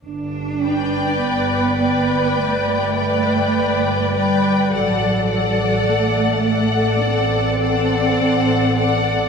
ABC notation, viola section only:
X:1
M:4/4
L:1/8
Q:1/4=52
K:G
V:1 name="Viola section"
z B2 B2 B2 B | A A2 A2 A2 A |]